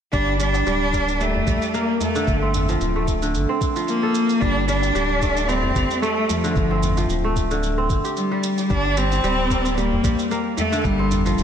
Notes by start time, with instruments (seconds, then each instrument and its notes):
0.13 analog synth bass G1, kora G3, cello D4, kick, shaker
0.28 darbuka tek
0.40 kora G3, cello D4, shaker
0.54 darbuka tek, shaker
0.66 analog synth bass D1, kora G3, shaker
0.93 kora A#3, kick, darbuka ka, shaker
1.07 darbuka tek, shaker
1.21 kora G3, cello A3, shaker
1.35 darbuka dum
1.47 analog synth bass A#1, kora G3, kick, shaker
1.62 darbuka ka, shaker
1.73 cello A#3, kora A#3, shaker
2.00 cello A3, darbuka ka, darbuka dum, shaker
2.15 kora D3, shaker
2.27 analog synth bass G1, kick, shaker
2.42 kora C4, darbuka tek
2.54 darbuka dum, shaker
2.69 kora F3, darbuka tek, shaker
2.81 analog synth bass D1, shaker
2.96 kora A3
3.08 kick, darbuka ka, shaker
3.22 kora D3, shaker
3.34 analog synth bass G1, shaker
3.49 kora C4, darbuka tek
3.61 kick, darbuka ka, shaker
3.76 kora F3, darbuka ka, shaker
3.88 cello A#3, shaker
4.03 kora A4
4.15 shaker
4.29 darbuka ka, shaker
4.41 analog synth bass G1, kora G3, cello D4, kick, shaker
4.56 darbuka tek
4.68 kora G3, cello D4, shaker
4.82 darbuka tek, shaker
4.95 analog synth bass D1, kora G3, shaker
5.22 kora A3, kick, darbuka ka, shaker
5.36 darbuka tek, shaker
5.48 kora G3, cello C4, shaker
5.63 darbuka dum
5.75 analog synth bass G1, kora G3, kick, shaker
5.90 darbuka ka, shaker
6.02 cello A3, kora A3, shaker
6.29 cello F3, darbuka ka, darbuka dum, shaker
6.44 kora D3, shaker
6.56 analog synth bass G1, kick, shaker
6.71 kora C4, darbuka tek
6.83 darbuka dum, shaker
6.97 kora F3, darbuka tek, shaker
7.09 analog synth bass D1, shaker
7.24 kora A3
7.36 kick, darbuka ka, shaker
7.51 kora D3, shaker
7.63 shaker
7.77 kora C4, darbuka tek
7.90 analog synth bass G1, kick, darbuka ka, shaker
8.04 kora G4, darbuka ka, shaker
8.17 cello G3, shaker
8.31 kora G3
8.44 shaker
8.58 darbuka ka, shaker
8.70 analog synth bass G1, kora G3, cello D4, kick, shaker
8.85 darbuka tek
8.97 kora G3, cello C4, shaker
9.12 darbuka tek, shaker
9.24 analog synth bass D1, kora G3, shaker
9.50 kora A#3, kick, shaker
9.65 darbuka tek, shaker
9.71 cello C4
9.78 kora G3, cello A#3, shaker
9.92 darbuka dum
10.04 analog synth bass A#1, kora G3, kick, shaker
10.19 darbuka ka, shaker
10.31 kora A#3, shaker
10.57 cello A3, darbuka ka, darbuka dum, shaker
10.72 kora D3, shaker
10.84 analog synth bass G1, cello G3, kick, shaker
10.99 kora C4, darbuka tek
11.11 darbuka dum, shaker
11.25 kora F3, darbuka tek, shaker
11.38 analog synth bass D1, shaker